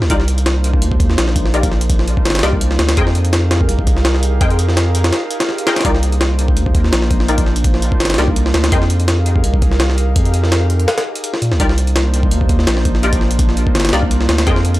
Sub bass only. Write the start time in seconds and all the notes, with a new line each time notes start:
0.02 C2
0.10 C2
0.82 D#2
1.18 A#1
2.25 G1
2.43 C2
2.79 D2
2.97 F2
3.69 C2
4.41 F2
5.85 C2
6.57 D#2
6.92 A#1
8.00 G1
8.18 C2
8.54 D2
8.72 F2
9.44 C2
10.16 F2
11.42 A#2
11.52 C2
11.60 C2
12.31 D#2
12.67 A#1
13.75 G1
13.93 C2
14.29 D2
14.47 F2